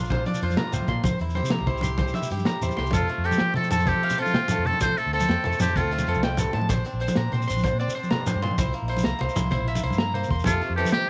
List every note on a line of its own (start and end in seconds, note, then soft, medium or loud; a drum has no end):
0.00 0.23 A#1 medium
0.00 0.26 D4 medium
0.00 0.42 F4 medium
0.00 shekere soft
0.04 low conga soft
0.10 0.39 A#2 medium
0.10 0.24 C5 medium
0.10 kick medium
0.10 closed hi-hat medium
0.10 muted conga medium
0.10 low conga medium
0.26 1.03 D4 medium
0.26 0.40 D5 medium
0.26 closed hi-hat soft
0.26 high conga medium
0.34 low conga medium
0.34 shekere medium
0.42 0.55 F2 medium
0.42 1.05 F4 medium
0.42 0.56 C5 medium
0.42 closed hi-hat soft
0.50 high conga medium
0.50 low conga soft
0.50 shekere soft
0.57 0.72 G2 medium
0.57 0.71 A#5 medium
0.57 snare medium
0.57 closed hi-hat medium
0.57 muted conga medium
0.57 low conga medium
0.67 low conga soft
0.72 0.80 D2 medium
0.72 0.88 A2 medium
0.72 0.87 C5 medium
0.72 closed hi-hat soft
0.72 shekere loud
0.82 high conga medium
0.87 1.01 A#2 medium
0.87 1.03 A#2 medium
0.87 1.02 C6 medium
0.87 kick medium
0.87 closed hi-hat soft
0.87 low conga medium
0.96 low conga soft
1.04 1.10 C2 medium
1.04 1.32 C3 medium
1.04 1.18 C5 medium
1.04 kick medium
1.04 closed hi-hat medium
1.04 muted conga medium
1.04 high conga medium
1.04 low conga soft
1.04 shekere loud
1.11 low conga medium
1.19 1.39 E2 medium
1.19 1.66 E4 medium
1.19 closed hi-hat soft
1.28 low conga soft
1.28 shekere soft
1.35 1.82 G4 medium
1.35 1.49 C5 medium
1.35 closed hi-hat soft
1.35 high conga medium
1.35 low conga soft
1.43 1.56 C3 medium
1.43 low conga medium
1.43 shekere medium
1.50 1.80 E3 medium
1.50 1.65 A#5 medium
1.50 snare medium
1.50 closed hi-hat medium
1.50 muted conga medium
1.58 2.11 C2 medium
1.58 high conga medium
1.66 2.14 E4 medium
1.66 1.81 C5 medium
1.66 kick medium
1.66 closed hi-hat soft
1.66 low conga medium
1.75 low conga soft
1.75 shekere soft
1.81 2.30 G4 medium
1.81 1.96 C6 medium
1.81 closed hi-hat soft
1.81 high conga medium
1.81 shekere medium
1.98 2.27 C3 medium
1.98 2.12 C5 medium
1.98 kick medium
1.98 closed hi-hat medium
1.98 muted conga medium
1.98 low conga medium
2.08 shekere soft
2.14 2.61 E4 medium
2.14 2.28 E5 medium
2.14 closed hi-hat soft
2.14 high conga medium
2.14 shekere soft
2.22 low conga medium
2.22 shekere medium
2.30 2.43 G2 medium
2.30 2.77 G4 medium
2.30 closed hi-hat soft
2.30 low conga soft
2.30 shekere soft
2.38 high conga medium
2.38 shekere soft
2.45 2.74 E3 medium
2.45 2.60 A#5 medium
2.45 snare medium
2.45 closed hi-hat medium
2.45 muted conga medium
2.45 low conga medium
2.45 shekere soft
2.61 2.68 E2 medium
2.61 2.92 E4 medium
2.61 2.76 C5 medium
2.61 closed hi-hat soft
2.61 low conga soft
2.61 shekere medium
2.69 high conga medium
2.69 low conga soft
2.69 shekere soft
2.77 2.90 C2 medium
2.77 2.92 G4 medium
2.77 2.91 C6 medium
2.77 snare soft
2.77 low conga medium
2.84 low conga soft
2.84 shekere soft
2.91 3.06 F2 medium
2.91 3.21 F2 medium
2.91 3.25 C4 soft
2.91 3.27 F4 medium
2.91 3.07 A4 medium
2.91 kick medium
2.91 closed hi-hat medium
2.91 muted conga medium
2.91 shekere medium
3.00 low conga medium
3.08 3.56 A3 medium
3.08 closed hi-hat soft
3.08 low conga soft
3.18 3.30 F2 medium
3.24 3.72 C4 medium
3.24 3.55 G4 medium
3.24 3.38 A4 medium
3.24 closed hi-hat soft
3.31 muted conga medium
3.31 high conga medium
3.31 low conga medium
3.31 shekere medium
3.38 3.69 F3 medium
3.38 3.53 F3 medium
3.38 3.54 G5 medium
3.38 snare medium
3.38 closed hi-hat medium
3.38 low conga soft
3.54 3.69 F3 medium
3.54 4.02 A3 medium
3.54 3.69 A4 medium
3.54 3.71 A4 medium
3.54 closed hi-hat medium
3.54 low conga loud
3.63 low conga soft
3.63 shekere soft
3.71 3.91 F2 medium
3.71 3.87 C4 medium
3.71 3.90 A4 medium
3.71 3.85 A5 medium
3.71 closed hi-hat soft
3.71 muted conga medium
3.71 shekere medium
3.78 high conga medium
3.78 shekere soft
3.86 4.15 F2 medium
3.86 4.18 C4 medium
3.86 4.19 G4 medium
3.86 4.01 A4 medium
3.86 kick medium
3.86 closed hi-hat medium
3.86 low conga medium
3.86 shekere soft
3.95 4.08 F3 medium
4.03 4.50 A3 medium
4.03 4.17 F5 medium
4.03 closed hi-hat medium
4.10 muted conga medium
4.10 low conga medium
4.10 shekere medium
4.18 4.66 C4 medium
4.18 4.68 F4 medium
4.18 4.32 A4 medium
4.18 closed hi-hat medium
4.18 low conga soft
4.26 high conga medium
4.26 shekere soft
4.34 4.63 F3 medium
4.34 4.48 G5 medium
4.34 snare medium
4.34 closed hi-hat medium
4.34 low conga medium
4.48 4.80 A3 medium
4.48 4.64 A4 medium
4.48 closed hi-hat soft
4.48 muted conga loud
4.48 shekere loud
4.58 4.71 F2 medium
4.58 low conga soft
4.65 4.82 C4 medium
4.65 4.82 A4 medium
4.65 4.79 A5 medium
4.65 closed hi-hat soft
4.65 low conga medium
4.73 high conga medium
4.73 low conga soft
4.81 5.10 F2 medium
4.81 4.94 F3 loud
4.81 5.13 C4 medium
4.81 4.95 A4 medium
4.81 4.99 C5 medium
4.81 kick medium
4.81 closed hi-hat medium
4.81 muted conga medium
4.81 shekere loud
4.89 low conga medium
4.97 5.44 A3 medium
4.97 5.13 A4 loud
4.97 closed hi-hat soft
4.97 low conga soft
5.06 5.25 D2 medium
5.13 5.61 C4 medium
5.13 5.27 A4 medium
5.13 5.57 A4 loud
5.13 closed hi-hat soft
5.20 muted conga medium
5.20 high conga medium
5.20 low conga medium
5.20 shekere medium
5.28 5.35 F2 medium
5.28 5.57 F3 medium
5.28 5.42 G5 medium
5.28 snare medium
5.28 closed hi-hat medium
5.44 5.51 F2 medium
5.44 5.91 A3 medium
5.44 5.58 A4 medium
5.44 closed hi-hat soft
5.44 low conga medium
5.52 low conga soft
5.52 shekere soft
5.60 5.79 F2 medium
5.60 5.77 C4 medium
5.60 5.78 G4 medium
5.60 5.74 A5 medium
5.60 snare soft
5.60 closed hi-hat soft
5.60 muted conga loud
5.60 shekere loud
5.68 high conga medium
5.76 6.04 F2 medium
5.76 6.08 C4 medium
5.76 6.23 F4 medium
5.76 5.90 A4 medium
5.76 kick medium
5.76 closed hi-hat medium
5.76 low conga medium
5.76 shekere soft
5.84 6.03 D2 medium
5.91 6.68 A3 medium
5.91 closed hi-hat soft
5.99 muted conga medium
5.99 low conga medium
5.99 shekere medium
6.07 6.13 F2 medium
6.07 6.69 C4 medium
6.07 6.21 A4 medium
6.07 closed hi-hat medium
6.07 low conga soft
6.14 6.47 C2 medium
6.14 high conga medium
6.14 shekere soft
6.23 6.38 F2 medium
6.23 6.37 G5 medium
6.23 snare medium
6.23 closed hi-hat medium
6.23 low conga medium
6.37 6.53 G2 medium
6.37 6.52 A4 medium
6.37 closed hi-hat soft
6.37 muted conga medium
6.37 shekere loud
6.46 low conga soft
6.53 6.69 A2 medium
6.53 6.67 A2 medium
6.53 6.68 A5 medium
6.53 closed hi-hat soft
6.53 low conga medium
6.61 high conga medium
6.61 low conga soft
6.69 6.82 A#1 loud
6.69 6.98 A#2 medium
6.69 7.01 D4 medium
6.69 6.83 C5 medium
6.69 kick medium
6.69 closed hi-hat medium
6.69 muted conga medium
6.69 shekere loud
6.78 low conga medium
6.85 7.34 C4 medium
6.85 closed hi-hat soft
6.85 low conga soft
6.93 7.06 A#1 medium
7.00 7.47 D4 medium
7.00 7.15 C5 medium
7.00 closed hi-hat soft
7.08 muted conga medium
7.08 high conga medium
7.08 low conga medium
7.08 shekere medium
7.15 7.30 A#2 medium
7.15 7.45 F3 medium
7.15 7.31 A#5 medium
7.15 snare medium
7.15 closed hi-hat medium
7.15 low conga soft
7.32 7.45 A#2 medium
7.32 7.80 C4 medium
7.32 7.46 C5 medium
7.32 closed hi-hat soft
7.32 low conga medium
7.42 shekere soft
7.48 7.68 A#1 medium
7.48 7.64 D4 medium
7.48 7.62 C6 medium
7.48 closed hi-hat soft
7.48 shekere medium
7.56 high conga medium
7.56 shekere soft
7.63 7.92 A#2 medium
7.63 7.94 D4 medium
7.63 7.78 C5 medium
7.63 kick medium
7.63 closed hi-hat medium
7.63 low conga medium
7.63 shekere soft
7.72 7.85 A#2 medium
7.79 8.73 C4 medium
7.79 7.93 D5 medium
7.79 closed hi-hat soft
7.88 low conga medium
7.88 shekere medium
7.95 8.56 D4 medium
7.95 8.09 C5 medium
7.95 closed hi-hat soft
7.95 low conga soft
8.03 high conga medium
8.03 shekere soft
8.10 8.26 G2 medium
8.10 8.25 A#5 medium
8.10 snare medium
8.10 closed hi-hat medium
8.10 low conga medium
8.26 8.42 A2 medium
8.26 8.41 C5 medium
8.26 closed hi-hat soft
8.26 muted conga medium
8.26 shekere medium
8.36 8.48 G2 medium
8.36 low conga soft
8.42 8.58 A#2 medium
8.42 8.56 C6 medium
8.42 closed hi-hat soft
8.42 low conga medium
8.51 high conga medium
8.51 low conga soft
8.58 8.71 C2 loud
8.58 8.86 C3 medium
8.58 8.87 E4 medium
8.58 8.72 C5 medium
8.58 kick medium
8.58 closed hi-hat medium
8.58 muted conga medium
8.58 shekere medium
8.66 low conga medium
8.73 9.17 A#3 medium
8.73 closed hi-hat soft
8.82 9.01 A#1 medium
8.88 9.34 E4 medium
8.88 9.03 C5 medium
8.88 closed hi-hat medium
8.97 muted conga medium
8.97 high conga medium
8.97 low conga medium
8.97 shekere medium
9.03 9.12 C2 medium
9.03 9.32 E3 medium
9.03 9.19 A#5 medium
9.03 snare medium
9.03 closed hi-hat medium
9.03 shekere soft
9.12 low conga soft
9.19 9.27 C2 medium
9.19 9.66 A#3 medium
9.19 9.35 C5 medium
9.19 closed hi-hat soft
9.19 low conga medium
9.29 shekere soft
9.36 9.56 C2 medium
9.36 9.50 E4 medium
9.36 9.50 C6 medium
9.36 closed hi-hat medium
9.36 muted conga medium
9.36 shekere medium
9.44 high conga medium
9.51 9.80 C3 medium
9.51 9.82 E4 medium
9.51 9.65 C5 medium
9.51 kick medium
9.51 closed hi-hat medium
9.51 low conga medium
9.60 9.79 A#1 medium
9.67 10.14 A#3 medium
9.67 9.82 E5 medium
9.67 closed hi-hat medium
9.67 low conga soft
9.75 muted conga medium
9.75 low conga medium
9.75 shekere medium
9.83 9.90 C2 medium
9.83 10.31 E4 medium
9.83 9.97 C5 medium
9.83 closed hi-hat soft
9.90 10.23 G2 medium
9.90 high conga medium
9.90 low conga soft
9.90 shekere soft
9.98 10.13 A#5 medium
9.98 snare medium
9.98 closed hi-hat medium
9.98 high conga soft
10.13 10.44 A#3 medium
10.13 10.28 C5 medium
10.13 closed hi-hat medium
10.13 low conga medium
10.24 shekere soft
10.28 10.43 E2 medium
10.28 10.44 C6 medium
10.28 kick medium
10.28 closed hi-hat soft
10.28 low conga medium
10.39 shekere soft
10.44 10.74 F2 medium
10.44 10.59 F2 medium
10.44 10.75 C3 medium
10.44 10.77 C4 medium
10.44 10.75 F4 medium
10.44 10.60 A4 medium
10.44 kick medium
10.44 closed hi-hat medium
10.44 muted conga medium
10.44 shekere loud
10.52 low conga medium
10.60 11.09 A3 medium
10.60 closed hi-hat soft
10.60 low conga soft
10.70 10.82 F2 medium
10.76 10.92 E3 medium
10.76 11.10 C4 medium
10.76 10.91 G4 medium
10.76 10.91 A4 medium
10.76 closed hi-hat soft
10.85 muted conga medium
10.85 high conga medium
10.85 shekere medium
10.92 11.10 C3 medium
10.92 11.06 F3 medium
10.92 11.10 F3 medium
10.92 11.10 G4 loud
10.92 11.07 G5 medium
10.92 snare medium
10.92 closed hi-hat medium
10.92 low conga soft